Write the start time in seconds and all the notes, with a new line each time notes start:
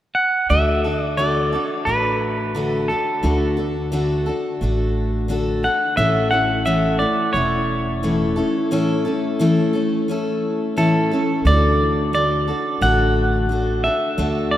0.15 F#5
0.50 D2 D3 A3 D4 F#4 A4 E5
0.84 D4 F#4 A4
1.03 D5
1.17 D3 A3 D4 F#4 A4 D5
1.52 D4 F#4 A4
1.85 A1 A3 D4 F#4 A4 B4
2.55 D3 A3 D4 F#4 A4
2.88 F#4 A4
2.92 D4
3.23 D2 D3 A3 D4 F#4 A4
3.57 D4 F#4 A4
3.92 D3 A3 D4 F#4 A4
4.26 D4 F#4 A4
4.61 A1 A3 D4 F#4 A4
5.28 D3 A3 D4 F#4 A4
5.63 D4 F#4 A4 F#5
5.97 A1 A2 E3 A3 C#4 E4 A4 E5
6.31 A3 C#4 E4 A4 F#5
6.65 A2 E3 A3 C#4 E4 A4 E5
6.99 A3 E4 A4 D5
7.33 E1 A3 C#4 E4 C#5
7.37 A4
8.03 A2 E3 A3 C#4 E4 A4
8.36 A3 C#4 E4 A4
8.71 A2 E3 A3 C#4 E4 A4
9.05 A3 C#4 E4 A4
9.39 A2 E3 A3 C#4 E4 A4
9.73 A3 C#4 E4 A4
10.08 A3 C#4 E4 A4
10.77 A2 E3 A3 C#4 E4 A4
11.11 A3 C#4 E4 A4
11.45 D2 D3 A3 D4 F#4 A4 D5
12.13 A3 D4 F#4 A4 D5
12.48 D4 F#4 A4
12.81 A1 D3 A3 D4 F#4 A4 F#5
13.49 A3 D4 F#4 A4
13.84 D4 F#4 A4 E5
14.18 D2 D3 A3 D4 F#4 A4
14.51 D5